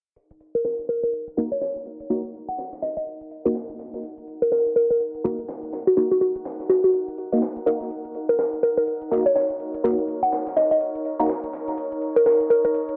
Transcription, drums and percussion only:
0.16 closed hi-hat
0.31 closed hi-hat
0.40 closed hi-hat
0.55 closed hi-hat
0.65 snare, closed hi-hat
0.79 closed hi-hat
0.89 closed hi-hat
1.03 closed hi-hat
1.13 closed hi-hat
1.27 closed hi-hat
1.37 closed hi-hat
1.52 closed hi-hat
1.61 snare, closed hi-hat
1.76 closed hi-hat
1.86 closed hi-hat
2.00 closed hi-hat
2.10 closed hi-hat
2.24 closed hi-hat
2.34 closed hi-hat
2.48 closed hi-hat
2.58 snare, closed hi-hat
2.73 snare, closed hi-hat
2.82 snare, closed hi-hat
2.97 closed hi-hat
3.07 closed hi-hat
3.21 closed hi-hat
3.31 open hi-hat
3.45 snare, closed hi-hat
3.55 snare, closed hi-hat
3.69 closed hi-hat
3.79 snare, closed hi-hat
3.94 snare, closed hi-hat
4.03 closed hi-hat
4.18 closed hi-hat
4.27 closed hi-hat
4.42 closed hi-hat
4.52 snare, closed hi-hat
4.66 closed hi-hat
4.76 closed hi-hat
4.90 closed hi-hat
5.00 closed hi-hat
5.15 closed hi-hat
5.24 closed hi-hat
5.39 closed hi-hat
5.48 snare, closed hi-hat
5.63 closed hi-hat
5.73 snare, closed hi-hat
5.87 closed hi-hat
5.97 closed hi-hat
6.11 closed hi-hat
6.21 closed hi-hat
6.35 closed hi-hat
6.45 snare, closed hi-hat
6.60 snare, closed hi-hat
6.69 snare, closed hi-hat
6.84 closed hi-hat
6.94 closed hi-hat
7.08 closed hi-hat
7.18 open hi-hat
7.32 snare, closed hi-hat
7.42 snare, closed hi-hat
7.56 closed hi-hat
7.66 snare, closed hi-hat
7.81 snare, closed hi-hat
7.90 closed hi-hat
8.05 closed hi-hat
8.15 closed hi-hat
8.29 closed hi-hat
8.39 snare, closed hi-hat
8.53 closed hi-hat
8.63 closed hi-hat
8.77 closed hi-hat
8.87 closed hi-hat
9.02 closed hi-hat
9.11 closed hi-hat
9.26 closed hi-hat
9.36 snare, closed hi-hat
9.50 closed hi-hat
9.60 closed hi-hat
9.74 closed hi-hat
9.84 closed hi-hat
9.98 closed hi-hat
10.08 closed hi-hat
10.23 closed hi-hat
10.32 snare, closed hi-hat
10.47 snare, closed hi-hat
10.56 snare, closed hi-hat
10.71 closed hi-hat
10.81 closed hi-hat
10.95 closed hi-hat
11.05 open hi-hat
11.19 snare, closed hi-hat
11.29 snare, closed hi-hat
11.44 closed hi-hat
11.53 snare, closed hi-hat
11.68 snare, closed hi-hat
11.78 closed hi-hat
11.92 closed hi-hat
12.02 closed hi-hat
12.16 closed hi-hat
12.26 snare, closed hi-hat
12.40 closed hi-hat
12.50 closed hi-hat
12.65 closed hi-hat
12.74 closed hi-hat
12.89 closed hi-hat

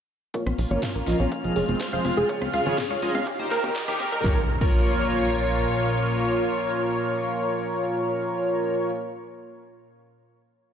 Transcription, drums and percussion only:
0.34 kick, closed hi-hat
0.47 cross-stick, closed hi-hat, high conga
0.59 open hi-hat
0.71 closed hi-hat
0.83 kick, snare, closed hi-hat, mid tom, high conga
0.95 closed hi-hat
1.07 snare, open hi-hat
1.20 closed hi-hat, high conga
1.32 kick, closed hi-hat
1.44 closed hi-hat
1.56 open hi-hat
1.68 closed hi-hat, high conga
1.80 kick, snare, closed hi-hat
1.93 closed hi-hat
2.05 cross-stick, open hi-hat, high conga
2.29 kick, closed hi-hat
2.42 cross-stick, closed hi-hat, high conga
2.54 open hi-hat
2.66 closed hi-hat
2.78 kick, snare, closed hi-hat, mid tom, high conga
2.90 closed hi-hat
3.02 open hi-hat
3.15 closed hi-hat, high conga
3.27 kick, closed hi-hat
3.39 closed hi-hat
3.51 snare, open hi-hat
3.64 closed hi-hat, high conga
3.76 kick, snare, closed hi-hat
3.88 kick, cross-stick, closed hi-hat, mid tom
4.00 cross-stick, open hi-hat, high conga
4.12 closed hi-hat
4.24 kick, snare
4.61 kick, crash

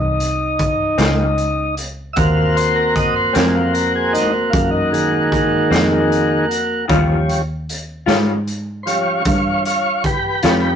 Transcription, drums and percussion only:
0.20 closed hi-hat
0.59 kick, closed hi-hat
0.98 snare, closed hi-hat
1.38 closed hi-hat
1.77 closed hi-hat
2.16 kick, closed hi-hat
2.57 closed hi-hat
2.96 kick, closed hi-hat
3.35 snare, closed hi-hat
3.75 closed hi-hat
4.15 snare, closed hi-hat
4.53 kick, closed hi-hat
4.94 closed hi-hat
5.32 kick, closed hi-hat
5.72 snare, closed hi-hat
6.12 closed hi-hat
6.51 closed hi-hat
6.90 kick, closed hi-hat
7.29 closed hi-hat
7.69 closed hi-hat
8.08 snare, closed hi-hat
8.47 closed hi-hat
8.87 closed hi-hat
9.25 kick, closed hi-hat
9.65 closed hi-hat
10.04 kick, closed hi-hat
10.43 snare, closed hi-hat

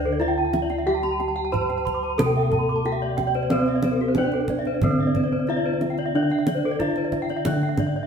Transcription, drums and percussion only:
0.21 kendang slap
0.53 kendang slap, kendang high
0.70 kendang slap
1.03 kendang slap
1.20 kendang slap
1.54 kendang slap, kendang low
1.70 kendang slap
1.87 kendang low
2.19 kendang high, kendang low
2.52 kendang slap, kendang low
2.85 kendang slap
3.18 kendang high, kendang low
3.35 kendang slap
3.50 kendang high
3.66 kendang slap
3.82 kendang slap, kendang high
4.15 kendang slap, kendang high, kendang low
4.32 kendang slap
4.48 kendang low
4.65 kendang slap
4.82 kendang low
5.15 kendang slap, kendang low
5.47 kendang slap
5.81 kendang slap, kendang high
5.98 kendang slap
6.30 kendang slap
6.47 kendang slap, kendang high
6.80 kendang slap, kendang low
6.96 kendang slap
7.12 kendang slap, kendang low
7.29 kendang slap
7.45 kendang high, kendang low
7.78 kendang slap, kendang high, kendang low

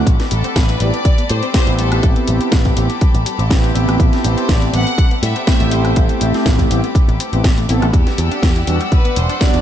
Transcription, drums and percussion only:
0.07 kick, closed hi-hat
0.20 snare, closed hi-hat
0.31 open hi-hat
0.44 closed hi-hat
0.56 kick, snare, closed hi-hat
0.69 closed hi-hat
0.80 open hi-hat
0.94 closed hi-hat
1.05 kick, closed hi-hat
1.18 closed hi-hat
1.29 open hi-hat
1.43 closed hi-hat
1.54 kick, snare, closed hi-hat
1.67 closed hi-hat
1.79 open hi-hat
1.92 cross-stick, closed hi-hat
2.03 kick, closed hi-hat
2.16 closed hi-hat
2.27 open hi-hat
2.41 closed hi-hat
2.52 kick, snare, closed hi-hat
2.65 kick, closed hi-hat
2.77 open hi-hat
2.90 closed hi-hat
3.01 kick, closed hi-hat
3.15 closed hi-hat
3.26 open hi-hat
3.39 closed hi-hat
3.51 kick, snare, closed hi-hat
3.64 closed hi-hat
3.75 open hi-hat
3.89 cross-stick, closed hi-hat
4.00 kick, closed hi-hat
4.13 snare, closed hi-hat
4.25 open hi-hat
4.38 closed hi-hat
4.49 kick, snare, closed hi-hat
4.62 closed hi-hat
4.74 open hi-hat
4.87 closed hi-hat
4.98 kick, closed hi-hat
5.11 closed hi-hat
5.23 open hi-hat
5.36 closed hi-hat
5.47 kick, snare, closed hi-hat
5.60 closed hi-hat
5.71 open hi-hat
5.85 cross-stick, closed hi-hat
5.96 kick, closed hi-hat
6.09 closed hi-hat
6.21 open hi-hat
6.34 snare, closed hi-hat
6.46 kick, snare, closed hi-hat
6.59 kick, closed hi-hat
6.71 open hi-hat
6.84 closed hi-hat
6.95 kick, closed hi-hat
7.09 closed hi-hat
7.20 open hi-hat
7.33 closed hi-hat
7.44 kick, snare, closed hi-hat
7.58 closed hi-hat
7.69 open hi-hat
7.82 cross-stick, closed hi-hat
7.93 kick, closed hi-hat
8.07 snare, closed hi-hat
8.18 open hi-hat
8.32 closed hi-hat
8.43 kick, snare, closed hi-hat
8.56 closed hi-hat
8.67 open hi-hat
8.81 closed hi-hat
8.92 kick, closed hi-hat
9.05 closed hi-hat
9.16 open hi-hat
9.30 closed hi-hat
9.41 kick, snare, closed hi-hat
9.54 closed hi-hat

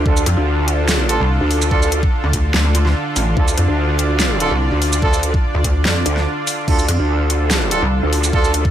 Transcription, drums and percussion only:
0.06 kick
0.17 shaker
0.26 closed hi-hat
0.68 closed hi-hat
0.89 snare, shaker
1.09 closed hi-hat
1.51 open hi-hat
1.62 shaker
1.71 kick
1.82 shaker
1.92 closed hi-hat
2.03 kick
2.33 kick, closed hi-hat
2.54 snare
2.75 closed hi-hat
2.86 snare
3.16 open hi-hat, shaker
3.37 kick
3.48 shaker
3.58 closed hi-hat
3.99 closed hi-hat
4.20 snare, shaker
4.40 closed hi-hat
4.82 open hi-hat
4.93 shaker
5.02 kick
5.13 shaker
5.23 closed hi-hat
5.34 kick
5.64 kick, closed hi-hat
5.85 snare
6.06 closed hi-hat
6.17 snare
6.47 open hi-hat, shaker
6.68 kick, crash
6.79 shaker
6.89 closed hi-hat
7.30 closed hi-hat
7.51 snare, shaker
7.71 closed hi-hat
8.13 open hi-hat
8.24 shaker
8.33 kick
8.44 shaker
8.54 closed hi-hat
8.65 kick

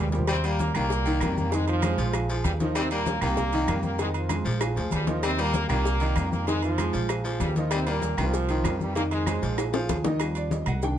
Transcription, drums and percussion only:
0.08 cowbell, low conga
0.13 low timbale, maracas
0.19 low conga
0.27 cowbell, high conga, low agogo, claves, maracas
0.44 high conga, low agogo, maracas
0.59 cowbell, high conga, maracas
0.74 high conga, low conga, low agogo, claves, maracas
0.90 cowbell, high conga, maracas
1.05 high conga, low agogo, maracas
1.21 cowbell, high conga, low agogo, claves, maracas
1.38 high conga, maracas
1.52 cowbell, low agogo, maracas
1.68 high conga, low agogo, maracas
1.82 cowbell, high conga, low agogo, claves, maracas
1.98 cowbell, maracas
2.13 cowbell, high conga, low agogo, claves, maracas
2.30 cowbell, high conga, maracas
2.44 cowbell, high conga, low agogo, maracas
2.60 cowbell, high conga, maracas
2.75 cowbell, high conga, low agogo, claves, maracas
2.91 high conga, low agogo, maracas
3.06 cowbell, high conga, maracas
3.21 high conga, low conga, low agogo, claves, maracas
3.37 cowbell, high conga, low conga, maracas
3.52 high conga, low agogo, maracas
3.68 cowbell, high conga, low agogo, claves, maracas
3.83 high conga, maracas
3.99 cowbell, high conga, low agogo, maracas
4.14 high conga, low agogo, maracas
4.29 cowbell, high conga, low agogo, claves, maracas
4.46 cowbell, high conga, maracas
4.61 cowbell, high conga, high timbale, low agogo, claves, maracas
4.76 cowbell, high conga, maracas
4.91 cowbell, high conga, low timbale, low agogo, maracas
5.07 cowbell, high conga, low timbale, maracas
5.23 cowbell, low agogo, claves, maracas
5.39 high conga, low agogo, maracas
5.54 cowbell, high conga, maracas
5.70 high conga, low conga, low agogo, claves, maracas
5.85 cowbell, high conga, maracas
6.00 high conga, low agogo, maracas
6.16 cowbell, high conga, low agogo, claves, maracas
6.32 high conga, maracas
6.47 cowbell, high conga, low agogo, maracas
6.62 high conga, low agogo, maracas
6.78 cowbell, high conga, low agogo, claves, maracas
6.94 cowbell, high conga, maracas
7.09 cowbell, high conga, low agogo, claves, maracas
7.25 cowbell, high conga, maracas
7.40 cowbell, high conga, low agogo, maracas
7.55 cowbell, high conga, maracas
7.71 cowbell, high conga, low agogo, claves, maracas
7.87 high conga, low agogo, maracas
8.02 cowbell, high conga, maracas
8.18 high conga, low conga, low agogo, claves, maracas
8.34 cowbell, high conga, maracas
8.49 high conga, low agogo, maracas
8.64 cowbell, high conga, low timbale, low agogo, claves, maracas
8.80 high conga, maracas
8.95 cowbell, high conga, low agogo, maracas
9.11 high conga, low agogo, maracas
9.26 cowbell, high conga, low agogo, claves, maracas
9.43 cowbell, high conga, maracas
9.58 cowbell, high conga, high timbale, low agogo, claves, maracas
9.74 cowbell, high bongo, high conga, high timbale, maracas
9.89 cowbell, high bongo, high conga, low timbale, low agogo, maracas
10.04 cowbell, low bongo, high conga, low timbale, maracas
10.20 cowbell, high conga, low agogo, claves, maracas
10.35 high conga, low agogo, maracas
10.51 cowbell, high conga, maracas
10.66 high conga, low conga, low agogo, claves, maracas
10.82 cowbell, high conga, maracas

